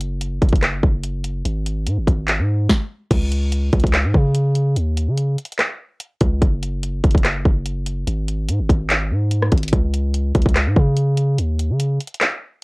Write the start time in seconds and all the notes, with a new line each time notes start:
Already playing: F#1
0.01 closed hi-hat
0.21 closed hi-hat
0.42 F#1, kick, closed hi-hat
0.49 F#1, kick, closed hi-hat
0.56 closed hi-hat
0.62 cross-stick, clap, closed hi-hat
0.83 F#1, kick
1.04 closed hi-hat
1.24 closed hi-hat
1.45 G#1, closed hi-hat
1.66 closed hi-hat
1.87 G#2, closed hi-hat
1.98 G#1
2.07 G#1, kick, closed hi-hat
2.28 clap, closed hi-hat
2.39 G#2
2.69 kick, snare
3.11 C#2, kick, closed hi-hat, crash
3.32 closed hi-hat
3.52 closed hi-hat
3.73 C#2, kick, closed hi-hat
3.80 closed hi-hat
3.84 C#2, kick, closed hi-hat
3.94 cross-stick, clap, closed hi-hat
4.04 G#2
4.14 C#3, kick
4.35 closed hi-hat
4.55 closed hi-hat
4.76 D#2, closed hi-hat
4.97 closed hi-hat
5.08 C#3
5.18 closed hi-hat
5.38 closed hi-hat
5.45 closed hi-hat
5.52 closed hi-hat
5.59 cross-stick, clap, closed hi-hat
6.00 closed hi-hat
6.21 C#2, kick, closed hi-hat
6.42 F#1, kick, closed hi-hat
6.63 closed hi-hat
6.83 closed hi-hat
7.04 F#1, kick, closed hi-hat
7.11 F#1, kick, closed hi-hat
7.18 closed hi-hat
7.25 cross-stick, clap, closed hi-hat
7.45 F#1, kick
7.66 closed hi-hat
7.86 closed hi-hat
8.07 G#1, closed hi-hat
8.28 closed hi-hat
8.49 G#2, closed hi-hat
8.60 G#1
8.69 G#1, kick, closed hi-hat
8.90 clap, closed hi-hat
9.11 G#2
9.31 closed hi-hat
9.42 cross-stick
9.52 G#1, kick, closed hi-hat, open hi-hat
9.58 closed hi-hat
9.63 closed hi-hat
9.68 closed hi-hat
9.73 C#2, kick
9.94 closed hi-hat
10.14 closed hi-hat
10.35 C#2, kick, closed hi-hat
10.42 C#2, kick, closed hi-hat
10.49 closed hi-hat
10.56 cross-stick, clap, closed hi-hat
10.67 G#2
10.76 C#3, kick
10.97 closed hi-hat
11.17 closed hi-hat
11.38 D#2, closed hi-hat
11.59 closed hi-hat
11.70 C#3
11.80 closed hi-hat
12.00 closed hi-hat
12.07 closed hi-hat
12.14 closed hi-hat
12.21 cross-stick, clap, closed hi-hat